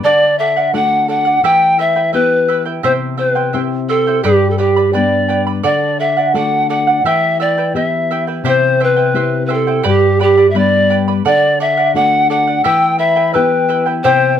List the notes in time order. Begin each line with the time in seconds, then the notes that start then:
0.04 D3 A4 D5 F#5
0.39 A4 D5 E5 F#5
0.56 D5 F#5
0.73 A3 D4 F#4 A4 D5 F#5
1.08 A4 D5 F#5
1.25 D5 F#5
1.43 E3 E4 G4 B4 E5 G5
1.78 E4 B4 E5 G5
1.96 E4 B4 G5
2.13 B3 E4 G4 B4 E5 G5
2.48 E4 B4 E5 G5
2.66 E4 B4 G5
2.83 C3 E4 G4 C5 E5 G5
3.17 E4 B4 C5 E5 G5
3.35 E4 C5 G5
3.53 C4 E4 G4 C5 E5 G5
3.89 E4 A4 C5 E5 G5
4.07 E4 C5 G5
4.23 G2 G4 B4 D5 G5 B5
4.51 A4
4.58 G4 B4 D5 G5 B5
4.76 B4 D5 B5
4.93 G3 B3 D4 B4 D5 G5 B5
5.28 B4 D5 G5 B5
5.47 B4 D5 B5
5.63 D3 A4 D5 F#5
6.00 A4 D5 E5 F#5
6.17 D5 F#5
6.34 A3 D4 F#4 A4 D5 F#5
6.70 A4 D5 F#5
6.87 D5 F#5
7.04 E3 E4 G4 B4 E5 G5
7.40 E4 B4 D5 E5 G5
7.58 E4 B4 G5
7.74 B3 E4 G4 B4 E5 G5
8.11 E4 B4 E5 G5
8.27 E4 B4 G5
8.44 C3 E4 G4 C5 E5 G5
8.48 C5
8.80 E4 B4 C5 E5 G5
8.96 E4 C5 G5
9.14 C4 E4 G4 C5 E5 G5
9.46 E4 B4 E5
9.50 A4 C5 G5
9.67 E4 C5 G5
9.83 G2 G4 B4 D5 G5 B5
9.88 G4
10.19 G4 B4 D5 G5 B5
10.37 B4 D5 B5
10.51 G3 B3 E5
10.55 D4 B4 D5 G5 B5
10.90 B4 D5 G5 B5
11.08 B4 D5 B5
11.25 D3 A4 D5 F#5
11.60 A4 D5 E5 F#5
11.77 D5 F#5
11.94 A3 D4 F#4 A4 D5 F#5
12.30 A4 D5 F#5
12.47 D5 F#5
12.64 E3 E4 G4 B4 E5 G5 E6
12.98 E4 B4 E5 G5 B5
13.16 E4 B4 G5
13.33 B3 E4 G4 B4 E5 G5
13.69 E4 B4 E5 G5
13.86 E4 B4 G5
14.04 C3 E4 G4 C5 E5 G5